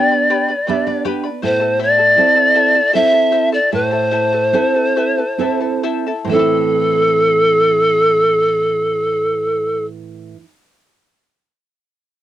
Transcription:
Already playing: B3 D4 G4 B4 D5 G5 B5
0.12 B4 D5 B5
0.30 G4 B4 D5 G5 B5
0.49 B4 D5 B5
0.67 B3 D4 G4 B4 D5 E5 G5 B5
0.87 B4 D5 B5
1.05 G4 B4 D5 G5 B5
1.24 B4 D5 B5
1.42 A2 E4 A4 C5 E5 A5
1.60 E4 A4 A5
1.79 E4 A4 C5 D5 E5 A5
1.98 E4 A4 A5
2.16 C4 E4 A4 E5 A5
2.35 E4 A4 A5
2.55 E4 A4 C5 E5 A5
2.75 E4 A4 A5
2.93 C4 E4 A4 C5 E5 A5
3.12 E4 A4 A5
3.32 E4 A4 C5 E5 A5
3.52 E4 A4 D5 A5
3.71 A2 E4 A4 C5 E5 A5
3.91 E4 A4 A5
4.11 E4 A4 C5 E5 A5
4.33 E4 A4 A5
4.53 C4 E4 A4 C5 E5 A5
4.75 E4 A4 A5
4.96 E4 A4 C5 E5 A5
5.18 E4 A4 A5
5.38 C4 E4 A4 E5 A5
5.61 E4 A4 A5
5.83 E4 A4 C5 E5 A5
6.06 E4 A4 A5
6.24 A2 E3 C5
6.29 A3 C4 E4 A4 E5
6.35 E4 A4
6.39 A5

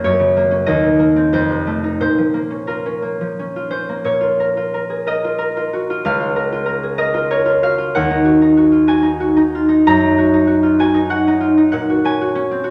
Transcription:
Already playing: A#3 C#4 A#4
0.04 F#2 C#5
0.19 C#3
0.37 A#3
0.51 C#4
0.66 D#2 D#5
0.83 A#2
0.99 A#3
1.16 C4
1.33 F2 C5
1.50 C3
1.67 A3
1.84 D#4
2.01 A#2 C5
2.18 F3
2.34 A#3
2.50 C#4
2.67 F4 A#4
2.86 C#4
3.02 A#3
3.21 F3
3.39 C#4
3.56 F4
3.70 C#4 C5
3.89 A#3
4.04 A#2 C#5
4.21 F4
4.40 A#4
4.57 F4
4.74 A#4
4.90 G#4
5.07 A#4 D#5
5.24 F4
5.38 A#4
5.57 F4
5.73 F#4
5.90 F4
6.05 C#2 F5
6.20 F4
6.36 A#4
6.52 F4
6.66 A#4
6.83 G#4
6.98 A#4 D#5
7.14 F4
7.30 A#4 C#5
7.46 F4
7.63 F#4 F5
7.78 F4
7.95 D#2 F#5
8.10 D#4
8.25 F#4
8.42 D#4
8.57 F#4
8.72 F4
8.87 F#4 G#5
9.02 D#4
9.20 F#4
9.37 D#4
9.55 F4
9.69 D#4
9.87 F#2 A#5
10.00 D#4
10.18 F#4
10.34 D#4
10.47 F#4
10.63 F4
10.79 F#4 G#5
10.94 D#4
11.09 F#4 F#5
11.28 D#4
11.41 F4
11.57 D#4
11.72 A#2 F#5
11.90 F#4
12.05 C#4 G#5
12.21 F#4
12.35 C#4
12.51 C4
12.64 F#4

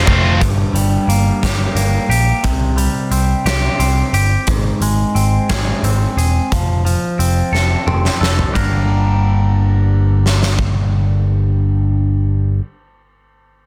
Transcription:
Already playing: F3 A3 C4 F4
0.05 F1 A3 C4 F4, kick
0.40 G1 G2, kick, closed hi-hat
0.73 G1 G3, closed hi-hat
1.07 G1 A#3, closed hi-hat
1.43 G1 G4, kick, snare, closed hi-hat
1.75 G1 A#3, closed hi-hat
2.09 A#1 G4, closed hi-hat
2.43 C2 C3, kick, closed hi-hat
2.77 G3, closed hi-hat
3.11 C2 C4, closed hi-hat
3.45 C2 G4, snare, closed hi-hat
3.79 C2 C4, closed hi-hat
4.13 G1 G4, closed hi-hat
4.47 G#1 G#2, kick, closed hi-hat
4.81 G#1 G#3, closed hi-hat
5.15 G#1 C4, closed hi-hat
5.49 G#1 G#4, kick, snare, closed hi-hat
5.83 G#1 C4, closed hi-hat
6.17 E1 G#4, closed hi-hat
6.52 F1 F3, kick, closed hi-hat
6.85 F3, closed hi-hat
7.19 F1 C4, closed hi-hat
7.52 F1 A4, snare
7.87 F1 C4, mid tom
8.05 snare
8.21 F1 A4, snare
8.39 floor tom
8.52 G1 G2 D3 G3 A#3 D4, kick, ride
8.56 A#4
10.26 snare
10.43 snare
10.59 kick

